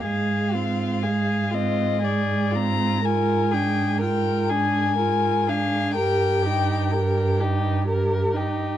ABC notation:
X:1
M:6/8
L:1/8
Q:3/8=41
K:Eb
V:1 name="Violin"
f3 e d b | a g g a2 f | g3 z3 |]
V:2 name="Violin"
A F A F A F | B A B A B A | B G B G B G |]
V:3 name="Viola"
A, C A, C A, C | F D F D F D | G E G E G E |]
V:4 name="Cello" clef=bass
A,,6- | A,,6 | G,,6 |]